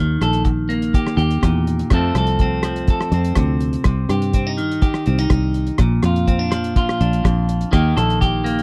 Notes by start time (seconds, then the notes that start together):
Already playing: D#2 D#3
0.21 A#1 A4, cross-stick, closed hi-hat
0.33 closed hi-hat
0.45 muted clean electric guitar stroke, kick, closed hi-hat
0.69 A#3, closed hi-hat
0.82 closed hi-hat
0.94 G4, kick, closed hi-hat
1.07 cross-stick
1.17 D#2 G4, closed hi-hat
1.31 closed hi-hat
1.42 E2 A#2, kick, cross-stick, closed hi-hat
1.67 closed hi-hat
1.79 closed hi-hat
1.90 F2 F3 A3 C4 A4, kick, cross-stick, closed hi-hat
2.15 C2 A4, cross-stick, closed hi-hat
2.27 closed hi-hat
2.39 C4, kick, closed hi-hat
2.63 F3, cross-stick, closed hi-hat
2.76 closed hi-hat
2.87 A4, kick, closed hi-hat
3.01 cross-stick
3.12 F2 C4, closed hi-hat
3.24 closed hi-hat
3.35 D2 C3, kick, cross-stick, closed hi-hat
3.60 closed hi-hat
3.73 closed hi-hat
3.84 C2 C3, kick, cross-stick, closed hi-hat
4.09 G2 G4, cross-stick, closed hi-hat
4.22 closed hi-hat
4.33 C4, kick, closed hi-hat
4.47 D#4
4.58 D#3, closed hi-hat
4.72 closed hi-hat
4.82 G4, kick, closed hi-hat
4.94 cross-stick
5.06 C2 C4, closed hi-hat
5.18 D#4, closed hi-hat
5.30 C2, muted clean electric guitar stroke, kick, cross-stick, closed hi-hat
5.54 closed hi-hat
5.67 closed hi-hat
5.78 A#1 A#2, kick, cross-stick, closed hi-hat
6.03 F2 F4, cross-stick, closed hi-hat
6.16 closed hi-hat
6.28 C4, kick, closed hi-hat
6.39 D4
6.51 F3, cross-stick, closed hi-hat
6.64 closed hi-hat
6.76 F4, kick, closed hi-hat
6.89 cross-stick
7.01 A#1 D4, closed hi-hat
7.13 closed hi-hat
7.24 A#1 F2, kick, cross-stick, closed hi-hat
7.49 closed hi-hat
7.61 closed hi-hat
7.71 D#2 D#3 A#3 D#4 G4, kick, cross-stick, closed hi-hat
7.97 A#1 A4, cross-stick, closed hi-hat
8.10 closed hi-hat
8.21 G4, kick, closed hi-hat
8.44 A#3, closed hi-hat
8.59 closed hi-hat